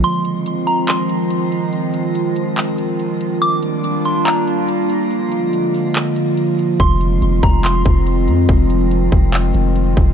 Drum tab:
HH |xxxxxxxx|xxxxxxxx|xxxxxxxx|xxxoxxxx|
CP |----x---|----x---|----x---|----x---|
BD |--------|--------|--------|--------|

HH |xxxxxxxx|xxxxxxxx|
CP |----x---|----x---|
BD |o--o-o--|o--o---o|